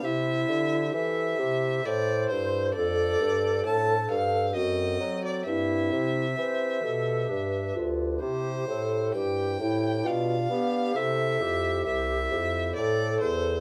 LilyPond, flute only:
\new Staff \with { instrumentName = "Flute" } { \time 3/4 \key c \major \tempo 4 = 66 e'4 a'8 g'8 c''4 | a'2 fis'8 r8 | e'4 c''8 a'8 g'8 f'8 | g'8 a'8 g'8 e'8 f'8 g'8 |
a'8 g'4. a'4 | }